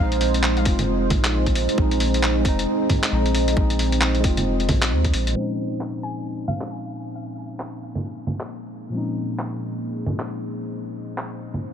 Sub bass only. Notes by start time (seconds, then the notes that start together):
0.00 A#1
0.66 F1
1.11 A#1
1.78 A#1
2.45 F1
3.12 A#1
3.57 A#1
4.24 F1
4.69 A#1
4.92 D#2
5.14 A#1